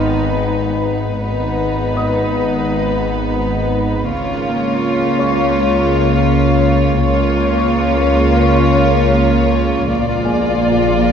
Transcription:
0, 0, Header, 1, 8, 480
1, 0, Start_track
1, 0, Tempo, 722892
1, 809, Time_signature, 4, 2, 24, 8
1, 7384, End_track
2, 0, Start_track
2, 0, Title_t, "Felt piano"
2, 0, Program_c, 0, 0
2, 0, Control_c, 0, 64, 127
2, 0, Note_on_c, 0, 77, 25
2, 0, Note_on_c, 0, 89, 39
2, 1027, Note_off_c, 0, 77, 0
2, 1027, Note_off_c, 0, 89, 0
2, 1298, Note_on_c, 0, 75, 27
2, 1305, Note_on_c, 0, 87, 38
2, 2707, Note_off_c, 0, 75, 0
2, 2711, Note_off_c, 0, 87, 0
2, 2742, Control_c, 0, 64, 0
2, 2861, Control_c, 0, 64, 127
2, 3446, Note_on_c, 0, 73, 29
2, 3452, Note_on_c, 0, 85, 41
2, 4861, Note_off_c, 0, 73, 0
2, 4864, Note_off_c, 0, 85, 0
2, 6581, Control_c, 0, 64, 0
2, 6691, Control_c, 0, 64, 127
2, 6807, Note_on_c, 0, 80, 43
2, 6811, Note_on_c, 0, 68, 38
2, 7384, Note_off_c, 0, 68, 0
2, 7384, Note_off_c, 0, 80, 0
2, 7384, End_track
3, 0, Start_track
3, 0, Title_t, "Violin section"
3, 0, Program_c, 1, 48
3, 0, Note_on_c, 1, 71, 43
3, 780, Note_off_c, 1, 71, 0
3, 804, Note_on_c, 1, 71, 48
3, 2700, Note_off_c, 1, 71, 0
3, 2724, Note_on_c, 1, 73, 54
3, 4620, Note_off_c, 1, 73, 0
3, 4653, Note_on_c, 1, 73, 61
3, 6545, Note_off_c, 1, 73, 0
3, 6572, Note_on_c, 1, 74, 64
3, 7384, Note_off_c, 1, 74, 0
3, 7384, End_track
4, 0, Start_track
4, 0, Title_t, "Violin section"
4, 0, Program_c, 2, 48
4, 0, Note_on_c, 2, 63, 43
4, 778, Note_off_c, 2, 63, 0
4, 807, Note_on_c, 2, 63, 42
4, 2702, Note_off_c, 2, 63, 0
4, 2728, Note_on_c, 2, 65, 47
4, 4622, Note_off_c, 2, 65, 0
4, 4662, Note_on_c, 2, 65, 55
4, 6549, Note_off_c, 2, 65, 0
4, 6574, Note_on_c, 2, 65, 60
4, 7384, Note_off_c, 2, 65, 0
4, 7384, End_track
5, 0, Start_track
5, 0, Title_t, "Viola section"
5, 0, Program_c, 3, 48
5, 0, Note_on_c, 3, 59, 42
5, 781, Note_off_c, 3, 59, 0
5, 794, Note_on_c, 3, 59, 43
5, 2695, Note_off_c, 3, 59, 0
5, 2724, Note_on_c, 3, 58, 48
5, 4620, Note_off_c, 3, 58, 0
5, 4647, Note_on_c, 3, 58, 61
5, 6542, Note_off_c, 3, 58, 0
5, 6563, Note_on_c, 3, 58, 61
5, 7384, Note_off_c, 3, 58, 0
5, 7384, End_track
6, 0, Start_track
6, 0, Title_t, "Cello section"
6, 0, Program_c, 4, 48
6, 0, Note_on_c, 4, 44, 45
6, 782, Note_off_c, 4, 44, 0
6, 804, Note_on_c, 4, 44, 43
6, 2700, Note_off_c, 4, 44, 0
6, 2736, Note_on_c, 4, 49, 51
6, 4626, Note_off_c, 4, 49, 0
6, 4653, Note_on_c, 4, 49, 58
6, 6545, Note_off_c, 4, 49, 0
6, 6571, Note_on_c, 4, 46, 62
6, 7384, Note_off_c, 4, 46, 0
6, 7384, End_track
7, 0, Start_track
7, 0, Title_t, "Double bass section"
7, 0, Program_c, 5, 48
7, 0, Note_on_c, 5, 32, 38
7, 778, Note_off_c, 5, 32, 0
7, 808, Note_on_c, 5, 32, 44
7, 2702, Note_off_c, 5, 32, 0
7, 2729, Note_on_c, 5, 37, 48
7, 4623, Note_off_c, 5, 37, 0
7, 4650, Note_on_c, 5, 37, 58
7, 6543, Note_off_c, 5, 37, 0
7, 6561, Note_on_c, 5, 34, 59
7, 7384, Note_off_c, 5, 34, 0
7, 7384, End_track
8, 0, Start_track
8, 0, Title_t, "Synth drone"
8, 0, Program_c, 6, 95
8, 0, Note_on_c, 6, 32, 60
8, 784, Note_off_c, 6, 32, 0
8, 804, Note_on_c, 6, 32, 61
8, 2700, Note_off_c, 6, 32, 0
8, 2737, Note_on_c, 6, 37, 63
8, 4643, Note_off_c, 6, 37, 0
8, 4651, Note_on_c, 6, 37, 68
8, 6544, Note_off_c, 6, 37, 0
8, 6563, Note_on_c, 6, 34, 67
8, 7384, Note_off_c, 6, 34, 0
8, 7384, End_track
0, 0, End_of_file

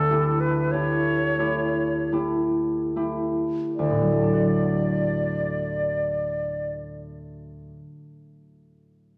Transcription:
0, 0, Header, 1, 3, 480
1, 0, Start_track
1, 0, Key_signature, 2, "major"
1, 0, Tempo, 1242236
1, 278, Tempo, 1395349
1, 758, Tempo, 1675978
1, 1238, Time_signature, 3, 2, 24, 8
1, 1238, Tempo, 1474201
1, 2678, Tempo, 1418440
1, 3004, End_track
2, 0, Start_track
2, 0, Title_t, "Flute"
2, 0, Program_c, 0, 73
2, 0, Note_on_c, 0, 69, 53
2, 155, Note_on_c, 0, 71, 42
2, 161, Note_off_c, 0, 69, 0
2, 276, Note_on_c, 0, 73, 47
2, 282, Note_off_c, 0, 71, 0
2, 757, Note_off_c, 0, 73, 0
2, 1227, Note_on_c, 0, 74, 34
2, 2190, Note_off_c, 0, 74, 0
2, 3004, End_track
3, 0, Start_track
3, 0, Title_t, "Harp"
3, 0, Program_c, 1, 46
3, 0, Note_on_c, 1, 38, 38
3, 39, Note_on_c, 1, 57, 21
3, 41, Note_on_c, 1, 64, 22
3, 42, Note_on_c, 1, 67, 27
3, 278, Note_off_c, 1, 57, 0
3, 279, Note_off_c, 1, 67, 0
3, 280, Note_off_c, 1, 64, 0
3, 281, Note_on_c, 1, 57, 23
3, 284, Note_on_c, 1, 64, 23
3, 284, Note_on_c, 1, 67, 25
3, 504, Note_off_c, 1, 57, 0
3, 505, Note_off_c, 1, 64, 0
3, 506, Note_off_c, 1, 67, 0
3, 508, Note_on_c, 1, 57, 20
3, 510, Note_on_c, 1, 64, 22
3, 511, Note_on_c, 1, 67, 24
3, 756, Note_off_c, 1, 57, 0
3, 758, Note_off_c, 1, 64, 0
3, 759, Note_off_c, 1, 67, 0
3, 760, Note_on_c, 1, 57, 23
3, 761, Note_on_c, 1, 64, 24
3, 764, Note_on_c, 1, 67, 25
3, 996, Note_off_c, 1, 57, 0
3, 998, Note_off_c, 1, 64, 0
3, 999, Note_off_c, 1, 67, 0
3, 1000, Note_on_c, 1, 57, 18
3, 1001, Note_on_c, 1, 64, 19
3, 1002, Note_on_c, 1, 67, 20
3, 1128, Note_off_c, 1, 38, 0
3, 1237, Note_on_c, 1, 38, 26
3, 1259, Note_off_c, 1, 64, 0
3, 1260, Note_off_c, 1, 67, 0
3, 1273, Note_on_c, 1, 45, 22
3, 1309, Note_on_c, 1, 54, 21
3, 1340, Note_off_c, 1, 57, 0
3, 1344, Note_on_c, 1, 57, 22
3, 1379, Note_on_c, 1, 62, 21
3, 1414, Note_on_c, 1, 66, 20
3, 2343, Note_off_c, 1, 62, 0
3, 2378, Note_off_c, 1, 66, 0
3, 2428, Note_off_c, 1, 57, 0
3, 2507, Note_off_c, 1, 38, 0
3, 2512, Note_off_c, 1, 54, 0
3, 2543, Note_off_c, 1, 45, 0
3, 3004, End_track
0, 0, End_of_file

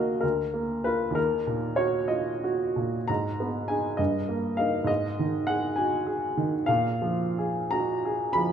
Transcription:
0, 0, Header, 1, 2, 480
1, 0, Start_track
1, 0, Key_signature, -6, "minor"
1, 0, Tempo, 619195
1, 907, Time_signature, 6, 3, 24, 8
1, 1380, Tempo, 655022
1, 2340, Tempo, 598802
1, 5220, Tempo, 695249
1, 5700, Tempo, 643087
1, 6554, End_track
2, 0, Start_track
2, 0, Title_t, "Grand piano"
2, 0, Program_c, 0, 0
2, 0, Control_c, 0, 64, 127
2, 0, Note_on_c, 0, 39, 30
2, 0, Note_on_c, 0, 58, 25
2, 0, Note_on_c, 0, 66, 26
2, 0, Note_on_c, 0, 70, 26
2, 0, Note_on_c, 0, 75, 40
2, 0, Note_on_c, 0, 77, 56
2, 80, Note_off_c, 0, 58, 0
2, 147, Note_off_c, 0, 70, 0
2, 151, Note_off_c, 0, 39, 0
2, 157, Note_off_c, 0, 66, 0
2, 159, Note_on_c, 0, 70, 44
2, 172, Note_off_c, 0, 75, 0
2, 176, Note_on_c, 0, 38, 30
2, 191, Control_c, 0, 64, 0
2, 198, Note_off_c, 0, 77, 0
2, 305, Control_c, 0, 64, 127
2, 415, Note_on_c, 0, 58, 27
2, 652, Note_off_c, 0, 70, 0
2, 654, Note_on_c, 0, 71, 48
2, 669, Note_on_c, 0, 70, 27
2, 670, Note_on_c, 0, 65, 25
2, 809, Note_off_c, 0, 58, 0
2, 857, Note_on_c, 0, 39, 33
2, 880, Note_off_c, 0, 70, 0
2, 885, Note_off_c, 0, 38, 0
2, 887, Note_off_c, 0, 65, 0
2, 891, Note_on_c, 0, 70, 52
2, 903, Note_off_c, 0, 71, 0
2, 919, Control_c, 0, 64, 0
2, 1057, Control_c, 0, 64, 127
2, 1139, Note_on_c, 0, 46, 25
2, 1366, Note_on_c, 0, 73, 50
2, 1371, Note_off_c, 0, 70, 0
2, 1378, Note_on_c, 0, 66, 28
2, 1511, Note_off_c, 0, 46, 0
2, 1598, Note_on_c, 0, 75, 41
2, 1599, Note_off_c, 0, 73, 0
2, 1612, Note_on_c, 0, 65, 22
2, 1748, Note_off_c, 0, 66, 0
2, 1850, Note_off_c, 0, 65, 0
2, 1863, Note_on_c, 0, 66, 31
2, 2098, Note_on_c, 0, 46, 27
2, 2253, Note_off_c, 0, 66, 0
2, 2286, Note_off_c, 0, 39, 0
2, 2329, Note_on_c, 0, 82, 60
2, 2335, Note_off_c, 0, 75, 0
2, 2339, Note_off_c, 0, 46, 0
2, 2342, Note_on_c, 0, 44, 36
2, 2353, Control_c, 0, 64, 0
2, 2472, Control_c, 0, 64, 127
2, 2590, Note_on_c, 0, 59, 27
2, 2812, Note_on_c, 0, 80, 50
2, 2817, Note_off_c, 0, 82, 0
2, 2826, Note_on_c, 0, 68, 29
2, 2827, Note_on_c, 0, 63, 26
2, 2968, Note_off_c, 0, 59, 0
2, 3038, Note_off_c, 0, 68, 0
2, 3039, Note_off_c, 0, 63, 0
2, 3040, Note_off_c, 0, 44, 0
2, 3046, Note_on_c, 0, 75, 48
2, 3055, Note_off_c, 0, 80, 0
2, 3060, Note_on_c, 0, 43, 32
2, 3074, Control_c, 0, 64, 0
2, 3201, Control_c, 0, 64, 127
2, 3298, Note_on_c, 0, 58, 29
2, 3526, Note_on_c, 0, 77, 52
2, 3527, Note_off_c, 0, 75, 0
2, 3543, Note_on_c, 0, 63, 28
2, 3543, Note_on_c, 0, 70, 31
2, 3680, Note_off_c, 0, 58, 0
2, 3744, Note_on_c, 0, 44, 37
2, 3755, Note_off_c, 0, 43, 0
2, 3758, Note_off_c, 0, 63, 0
2, 3758, Note_off_c, 0, 70, 0
2, 3768, Note_on_c, 0, 75, 60
2, 3773, Note_off_c, 0, 77, 0
2, 3790, Control_c, 0, 64, 0
2, 3899, Control_c, 0, 64, 127
2, 4025, Note_on_c, 0, 51, 31
2, 4246, Note_on_c, 0, 78, 59
2, 4255, Note_off_c, 0, 75, 0
2, 4258, Note_on_c, 0, 68, 29
2, 4405, Note_off_c, 0, 51, 0
2, 4478, Note_on_c, 0, 80, 47
2, 4490, Note_off_c, 0, 78, 0
2, 4497, Note_on_c, 0, 66, 25
2, 4638, Note_off_c, 0, 68, 0
2, 4725, Note_on_c, 0, 68, 37
2, 4734, Note_off_c, 0, 66, 0
2, 4972, Note_on_c, 0, 51, 32
2, 5113, Note_off_c, 0, 68, 0
2, 5170, Note_off_c, 0, 44, 0
2, 5204, Note_on_c, 0, 77, 62
2, 5209, Note_off_c, 0, 80, 0
2, 5219, Note_off_c, 0, 51, 0
2, 5220, Note_on_c, 0, 46, 42
2, 5231, Control_c, 0, 64, 0
2, 5333, Control_c, 0, 64, 127
2, 5451, Note_on_c, 0, 53, 30
2, 5705, Note_on_c, 0, 68, 34
2, 5855, Note_off_c, 0, 53, 0
2, 5945, Note_on_c, 0, 82, 62
2, 5948, Note_off_c, 0, 77, 0
2, 5958, Note_on_c, 0, 66, 26
2, 6102, Note_off_c, 0, 68, 0
2, 6194, Note_off_c, 0, 66, 0
2, 6203, Note_on_c, 0, 68, 37
2, 6411, Note_on_c, 0, 83, 67
2, 6418, Note_off_c, 0, 82, 0
2, 6426, Note_on_c, 0, 53, 32
2, 6554, Note_off_c, 0, 46, 0
2, 6554, Note_off_c, 0, 53, 0
2, 6554, Note_off_c, 0, 68, 0
2, 6554, Note_off_c, 0, 83, 0
2, 6554, End_track
0, 0, End_of_file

